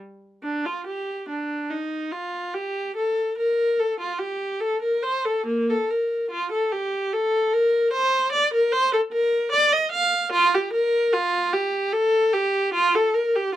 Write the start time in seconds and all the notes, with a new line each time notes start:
0.43 D4
0.65 F4
0.87 G4
1.29 D4
1.70 D#4
2.12 F4
2.53 G4
2.96 A4
3.38 A#4
3.79 A4
4.00 F4
4.19 G4
4.60 A4
4.82 A#4
5.02 C5
5.25 A4
5.46 A#3
5.70 A4
5.90 A#4
6.31 F4
6.52 A4
6.72 G4
7.13 A4
7.53 A#4
7.93 C5
8.32 D5
8.53 A#4
8.72 C5
8.93 A4
9.12 A#4
9.52 D5
9.72 D#5
9.92 F5
10.32 F4
10.54 G4
10.73 A#4
11.13 F4
11.53 G4
11.93 A4
12.33 G4
12.74 F4
12.95 A4
13.14 A#4
13.36 G4